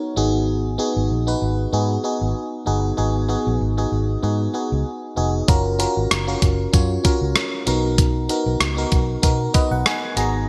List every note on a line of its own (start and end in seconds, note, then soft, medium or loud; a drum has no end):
0.00 0.16 B3 medium
0.00 0.17 D#4 medium
0.00 0.17 F#4 medium
0.00 0.19 A#4 medium
0.00 0.19 C#5 medium
0.16 0.77 G#1 medium
0.16 0.75 B3 medium
0.16 0.75 D#4 medium
0.16 0.75 F#4 medium
0.16 0.75 G#4 medium
0.78 1.23 B3 medium
0.78 1.24 D#4 medium
0.78 1.24 F#4 medium
0.78 1.24 G#4 medium
0.97 1.07 G#1 medium
1.10 1.34 A#1 medium
1.27 1.69 B3 medium
1.27 1.70 D#4 medium
1.27 1.70 F#4 medium
1.27 1.70 B4 medium
1.42 1.65 G#1 medium
1.73 1.96 G#2 medium
1.73 2.02 B3 medium
1.73 2.02 D#4 medium
1.73 2.02 F#4 medium
1.73 2.02 G#4 medium
2.04 2.62 B3 medium
2.04 2.62 D#4 medium
2.04 2.63 F#4 medium
2.04 2.63 G#4 medium
2.21 2.32 G#1 medium
2.66 2.91 G1 medium
2.66 2.96 B3 medium
2.66 2.96 D#4 medium
2.66 2.96 F#4 medium
2.66 2.96 G#4 medium
2.97 3.35 G#1 medium
2.97 3.27 B3 medium
2.97 3.27 D#4 medium
2.97 3.27 F#4 medium
2.97 3.27 G#4 medium
3.28 3.73 B3 medium
3.28 3.74 D#4 medium
3.28 3.74 F#4 medium
3.28 3.74 G#4 medium
3.47 3.57 A#1 medium
3.61 3.84 G#1 medium
3.77 4.20 B3 medium
3.77 4.20 D#4 medium
3.77 4.20 F#4 medium
3.77 4.20 G#4 medium
3.92 4.15 G#1 medium
4.23 4.47 G#2 loud
4.23 4.52 B3 medium
4.23 4.52 D#4 medium
4.23 4.52 F#4 medium
4.23 4.53 G#4 medium
4.54 5.12 B3 medium
4.54 5.12 D#4 medium
4.54 5.13 F#4 medium
4.54 5.13 G#4 medium
4.72 4.83 C#2 medium
5.16 5.41 F1 medium
5.16 5.46 B3 medium
5.16 5.46 D#4 medium
5.16 5.46 F#4 medium
5.16 5.46 G#4 medium
5.48 5.85 F#1 medium
5.48 5.77 C#4 medium
5.48 5.77 F4 medium
5.48 5.78 F#4 medium
5.48 5.78 A#4 medium
5.48 kick medium
5.48 closed hi-hat medium
5.79 6.23 C#4 medium
5.79 6.24 F4 medium
5.79 6.24 F#4 medium
5.79 6.24 A#4 medium
5.79 closed hi-hat medium
5.97 6.07 G#1 medium
6.11 6.34 F#1 medium
6.11 cross-stick loud
6.11 closed hi-hat medium
6.27 6.70 C#4 medium
6.27 6.70 F4 medium
6.27 6.70 F#4 medium
6.27 6.70 A#4 medium
6.42 6.66 F#1 medium
6.42 kick medium
6.42 closed hi-hat medium
6.73 6.97 F#2 medium
6.73 7.02 C#4 medium
6.73 7.02 F4 medium
6.73 7.02 F#4 medium
6.73 7.03 C#5 medium
6.73 kick medium
6.73 closed hi-hat medium
7.04 7.62 C#4 medium
7.04 7.63 F4 medium
7.04 7.63 F#4 medium
7.04 7.63 A#4 medium
7.04 kick medium
7.04 closed hi-hat medium
7.21 7.32 C#2 medium
7.36 cross-stick loud
7.36 closed hi-hat medium
7.66 8.27 B1 medium
7.66 8.25 B3 medium
7.66 8.25 D#4 medium
7.66 8.25 F#4 medium
7.66 8.25 A#4 medium
7.66 closed hi-hat medium
7.98 kick loud
7.98 closed hi-hat medium
8.29 8.74 B3 medium
8.29 8.74 D#4 medium
8.29 8.74 F#4 medium
8.29 8.74 A#4 medium
8.29 closed hi-hat medium
8.46 8.57 B1 medium
8.60 8.84 C#2 medium
8.60 cross-stick loud
8.60 closed hi-hat medium
8.77 9.19 B3 medium
8.77 9.20 D#4 medium
8.77 9.20 F#4 medium
8.77 9.20 A#4 medium
8.92 9.16 B1 medium
8.92 kick medium
8.92 closed hi-hat medium
9.22 9.47 B2 medium
9.22 9.52 B3 medium
9.22 9.52 D#4 medium
9.22 9.52 F#4 medium
9.22 9.52 A#4 medium
9.22 kick medium
9.22 closed hi-hat medium
9.54 10.12 B3 medium
9.54 10.12 D#4 medium
9.54 10.13 F#4 medium
9.54 10.13 B4 medium
9.54 9.70 D#5 medium
9.54 kick medium
9.54 closed hi-hat medium
9.71 9.82 B1 medium
9.71 9.85 F#5 medium
9.86 10.15 G#5 medium
9.86 cross-stick loud
9.86 closed hi-hat medium
10.16 10.49 G#1 medium
10.16 10.49 B3 medium
10.16 10.49 D#4 medium
10.16 10.49 F#4 medium
10.16 10.49 G#4 medium
10.16 10.46 A#5 medium
10.16 closed hi-hat medium